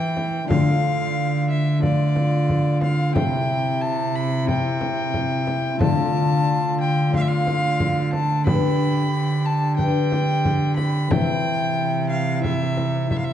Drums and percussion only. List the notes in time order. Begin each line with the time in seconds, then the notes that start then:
0.17 frame drum
0.50 frame drum
1.83 frame drum
2.16 frame drum
2.49 frame drum
2.81 frame drum
3.16 frame drum
4.48 frame drum
4.81 frame drum
5.14 frame drum
5.47 frame drum
5.80 frame drum
7.13 frame drum
7.47 frame drum
7.80 frame drum
8.13 frame drum
8.47 frame drum
9.79 frame drum
10.12 frame drum
10.45 frame drum
10.78 frame drum
11.11 frame drum
12.44 frame drum
12.78 frame drum
13.11 frame drum